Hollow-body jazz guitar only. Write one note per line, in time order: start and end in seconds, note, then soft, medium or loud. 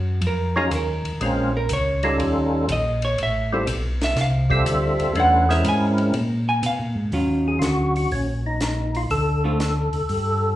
0.27 0.57 A#4 medium
0.57 0.72 G#4 medium
0.75 1.52 A#4 medium
1.57 1.71 A#4 medium
1.73 2.51 C#5 medium
2.72 3.03 D#5 medium
3.05 3.19 C#5 medium
3.23 3.99 E5 medium
4.04 4.18 E5 medium
4.21 4.98 F5 medium
5.20 5.50 F#5 loud
5.51 5.65 E5 medium
5.69 6.46 G#5 medium
6.49 6.64 G#5 medium
6.66 7.04 F5 medium
7.13 8.52 F#3 medium
7.13 8.52 C#4 medium
7.13 8.52 F4 medium
9.44 9.58 D3 medium
9.44 9.59 A3 medium
9.44 9.59 C4 medium
9.44 9.59 F4 medium